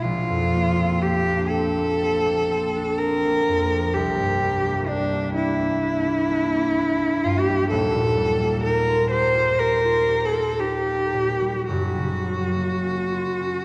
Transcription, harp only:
0.04 A#1
0.30 F2
0.55 A#3
0.79 C4
1.04 A#3
1.28 D4
1.54 C4
1.77 A#3
2.01 C4
2.26 A#3
2.51 C4
2.76 D4
3.00 C4
3.25 A#3
3.48 F2
3.73 A#3
3.96 C2
4.19 G2
4.42 G3
4.65 A#3
4.89 D4
5.12 A#3
5.36 D4
5.59 A#3
5.83 D4
6.07 A#3
6.31 D4
6.55 A#3
6.78 D4
7.02 A#3
7.25 G2
7.49 G3
7.71 D#1 D#2
7.95 A#2
8.17 G3
8.41 A#3
8.64 D#4
8.89 F4
9.11 G4
9.35 F4
9.59 G4
9.85 F4
10.09 G4
10.33 F4
10.59 D#4
10.86 A#3
11.14 A#2
11.41 G3
11.68 F#1 F#2
11.96 C#3
12.25 F#3
12.54 A#3
12.83 C#4
13.12 F4
13.41 C#4

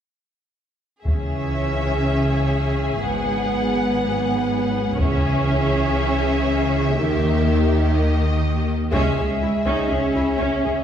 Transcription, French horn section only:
1.05 E3 G#4
3.02 F#3 B4
4.98 E3 G#4
6.95 D#3 G4
8.91 G#4 E5

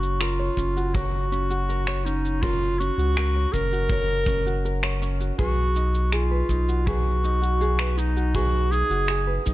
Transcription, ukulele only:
Already playing: C#4 F#4 A#4 C#5
0.21 A#4
0.39 C#5
0.58 C#4
0.76 F#4
0.95 A#4 C#5
1.32 C#4
1.50 F#4
1.69 A#4
1.88 C#5
2.06 C#4
2.43 A#4 C#5
2.80 C#4
2.99 F#4
3.17 A#4
3.36 C#5
3.54 C#4
3.72 F#4
3.91 A#4 C#5
4.28 C#4
4.46 F#4
4.65 A#4
4.83 C#5
5.02 C#4
5.20 F#4
5.38 G#4 B4
5.76 D#4
6.12 G#4
6.31 B4
6.49 D#4
6.69 F#4
6.87 G#4 B4
7.24 D#4
7.42 F#4
7.61 G#4
7.80 B4
7.97 D#4
8.16 F#4
8.35 G#4 B4
8.71 D#4
8.90 F#4
9.09 G#4
9.27 B4
9.46 D#4

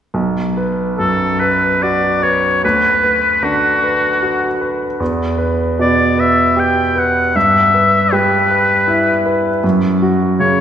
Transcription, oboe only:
0.98 A4
1.40 B4
1.82 D5
2.23 C#5
2.65 B4
3.44 F#4
5.81 D5
6.20 E5
6.60 G5
6.99 F#5
7.36 E5
8.13 B4
10.40 C#5

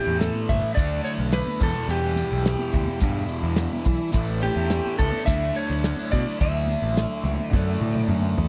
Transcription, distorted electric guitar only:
Already playing: A2 E3 A3
0.75 D3 A3 D4
1.60 E2 B2 E3
4.12 A2 E3
4.16 A3
5.25 D3 A3 D4
7.51 D3 A3 D4

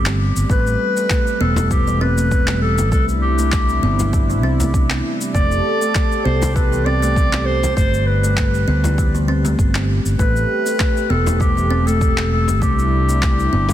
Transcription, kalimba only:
0.49 A3
0.97 A3
1.10 A3
1.41 B3
1.57 E4
1.71 G3
1.88 E3
2.01 C4
2.18 A3
2.92 A3
3.39 A3
3.53 A3
3.83 B3
3.99 E4
4.13 G3
4.30 E3
4.43 C4
4.60 A3
5.35 A3
5.81 A3
6.25 B3
6.42 E4
6.56 G3
6.72 E3
6.86 C4
7.02 A3
7.77 A3
8.23 A3
8.37 A3
8.68 B3
8.84 E4
8.98 G3
9.15 E3
9.28 C4
9.45 A3
10.19 A3
10.66 A3
10.80 A3
11.10 B3
11.26 E4
11.40 G3
11.57 E3
11.70 C4
11.87 A3
12.62 A3
13.09 A3
13.53 B3
13.69 E4

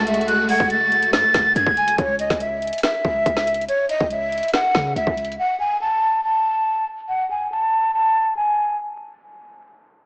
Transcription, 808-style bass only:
Already playing: C#2
0.60 F#1
1.13 F#2
1.24 F#1
1.34 F#1
1.56 F#2
1.66 F#1
1.98 C#2
2.30 C#2
3.05 C#2
3.26 C#2
4.00 C#2
4.75 C#3
4.96 C#2
5.07 C#2

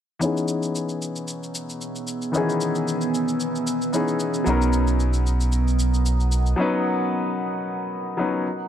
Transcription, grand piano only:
0.19 E3 B3 C#4 D#4
0.25 G#4
2.32 D#3 B3 C#4 D#4
2.37 E3 G#4
3.92 E3 B3 C#4 D#4 G#4
4.44 F#3 B3 C#4 D#4
4.50 A#4
6.56 F#3 B3 C#4 D#4
6.62 B4
8.17 F#3 B3 C#4 D#4 B4

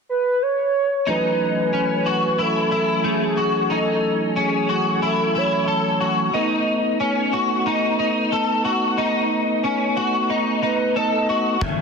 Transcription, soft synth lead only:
0.09 B4
0.42 C#5
1.09 B4
2.42 A4
3.08 G#4
3.73 A4
4.39 G#4
5.05 A4
5.38 C#5
10.64 B4
10.96 D#5
11.64 E5

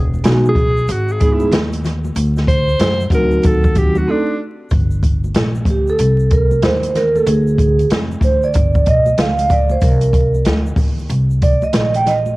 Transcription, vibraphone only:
0.24 G#3 B3 D#4 F#4
1.20 G#3 B3 D#4 G#4
3.11 F#3 C4 D#4 F#4
4.07 A3 C4 D#4 A4
5.70 G4
5.90 A4
6.33 A#4
6.64 C5
6.96 A#4
7.16 A4
7.27 G#4
8.24 C5
8.44 D5
8.88 D#5
9.19 F5
9.52 D5
9.72 C5
9.83 A#4
11.43 D5
11.64 D#5
11.96 G5
12.07 D#5

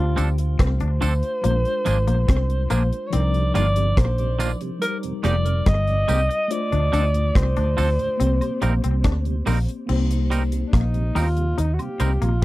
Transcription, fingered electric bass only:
Already playing: D2
0.18 D2
0.60 C2
0.82 D2
1.03 D2
1.45 A#1
1.87 G#1
2.08 A#1
2.29 C2
2.71 A#1
3.14 C2
3.56 G1
3.97 A#1
5.24 F1
5.67 G1
6.09 C2
6.73 D2
6.93 D2
7.36 C2
7.58 D2
7.79 D2
8.21 C2
8.63 A#1
8.84 C2
9.05 D2
9.47 A#1
9.90 C2
10.74 A#1
11.16 D#2
11.59 D#2
12.00 C2
12.22 A#1

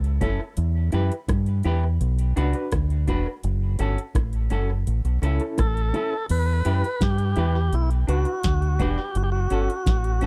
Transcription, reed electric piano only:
0.21 C#4 E4 A4
0.93 E4 G4 B4
1.65 E4 G4 B4
2.36 D4 F#4 B4
2.54 D4 F#4 B4
3.07 D4 F#4 B4
3.79 C#4 F#4 A4
4.51 C#4 F#4 A4
5.22 C#4 E4 A4
5.40 C#4 E4 A4
5.94 C#4 E4 A4
6.65 E4 G4 B4
7.36 E4 G4 B4
8.08 D4 F#4 B4
8.26 F#4 B4
8.79 D4 F#4 B4
9.51 C#4 F#4 A4
10.22 C#4 F#4 A4

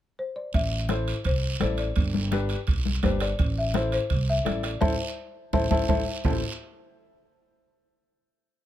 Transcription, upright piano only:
0.89 E4 A4 C5
1.61 E4 A4 D5
2.31 D4 G4 B4
3.03 D4 G4 B4
3.74 E4 A4 C5
4.45 E4 A4 D5
4.81 E4 A4 C5
5.53 E4 A4 C5
5.72 E4 A4 C5
5.89 E4 A4 C5
6.25 E4 A4 C5

